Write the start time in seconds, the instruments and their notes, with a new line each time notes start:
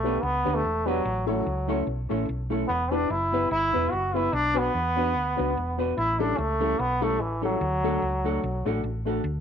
Already playing: fingered electric bass B1, trombone A3
0.03 hollow-body jazz guitar B3 D4 G4 B4, upright piano D4 G4 B4 D5
0.23 fingered electric bass C#2, trombone B3
0.45 fingered electric bass D2, hollow-body jazz guitar B3 D4 G4 B4, upright piano D4 G4 B4 D5
0.55 trombone A3
0.64 fingered electric bass E1
0.85 trombone F#3, hollow-body jazz guitar B3 D4 G4 B4, upright piano D4 G4 B4 D5
1.05 fingered electric bass A1
1.26 trombone F#3, hollow-body jazz guitar A3 C#4 E4 A4, upright piano C#4 E4 A4 C#5
1.46 fingered electric bass C#2
1.68 hollow-body jazz guitar A3 C#4 E4 A4, upright piano C#4 E4 A4 C#5
1.87 fingered electric bass B1
2.09 fingered electric bass A1, hollow-body jazz guitar A3 C#4 E4 A4, upright piano C#4 E4 A4 C#5
2.29 fingered electric bass B1
2.50 hollow-body jazz guitar A3 C#4 E4 A4, upright piano C#4 E4 A4 C#5
2.68 fingered electric bass E1, trombone B3
2.91 upright piano B3 E4 G4 B4, hollow-body jazz guitar B3 E4 G4 B4, trombone D4
3.10 fingered electric bass F#1, trombone E4
3.32 upright piano B3 E4 G4 B4, hollow-body jazz guitar B3 E4 G4 B4
3.51 fingered electric bass G1, trombone E4
3.73 fingered electric bass E1, upright piano B3 E4 G4 B4, hollow-body jazz guitar B3 E4 G4 B4
3.91 fingered electric bass F#1, trombone F#4
4.13 upright piano B3 E4 G4 B4, hollow-body jazz guitar B3 E4 G4 B4, trombone E4
4.33 fingered electric bass B1, trombone D4
4.54 upright piano B3 D4 F#4 B4, hollow-body jazz guitar B3 D4 F#4 B4, trombone B3
4.75 fingered electric bass E2
4.95 upright piano B3 D4 F#4 B4, hollow-body jazz guitar B3 D4 F#4 B4
5.15 fingered electric bass D2
5.36 fingered electric bass C#2, upright piano B3 D4 F#4 B4, hollow-body jazz guitar B3 D4 F#4 B4
5.57 fingered electric bass E1
5.77 upright piano B3 D4 F#4 B4, hollow-body jazz guitar B3 D4 F#4 B4
5.97 fingered electric bass A1, trombone E4
6.19 hollow-body jazz guitar G3 C#4 E4 A4, upright piano C#4 E4 G4 A4, trombone D4
6.38 fingered electric bass C#2, trombone A3
6.60 hollow-body jazz guitar G3 C#4 E4 A4, upright piano C#4 E4 G4 A4
6.79 fingered electric bass B1, trombone B3
7.01 hollow-body jazz guitar G3 C#4 E4 A4, trombone A3, upright piano C#4 E4 G4 A4
7.20 fingered electric bass A1, trombone E3
7.41 trombone F#3, hollow-body jazz guitar G3 C#4 E4 A4, upright piano C#4 E4 G4 A4
7.61 fingered electric bass D2
7.83 upright piano A3 D4 F#4 A4, hollow-body jazz guitar A3 D4 F#4 A4
8.02 fingered electric bass C#2
8.24 upright piano A3 D4 F#4 A4, hollow-body jazz guitar A3 D4 F#4 A4
8.44 fingered electric bass B1
8.65 fingered electric bass A1, upright piano A3 D4 F#4 A4, hollow-body jazz guitar A3 D4 F#4 A4
8.84 fingered electric bass A1
9.05 upright piano A3 D4 F#4 A4, hollow-body jazz guitar A3 D4 F#4 A4
9.24 fingered electric bass D2